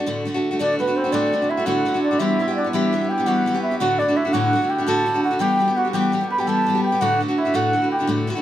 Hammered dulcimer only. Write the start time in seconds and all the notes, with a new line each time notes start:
0.61 D4
0.80 B3
0.98 C4
1.14 D4
1.51 E4
1.68 F#4
2.04 D4
2.22 E4
2.42 E4
2.58 D4
2.74 E4
3.11 G4
3.27 F#4
3.63 E4
3.81 F#4
4.00 D4
4.16 E4
4.33 F#4
4.70 G4
4.87 A4
5.24 F#4
5.41 G4
5.78 F#4
5.94 G4
6.30 B4
6.47 A4
6.84 G4
7.02 F#4
7.38 E4
7.54 F#4
7.92 G4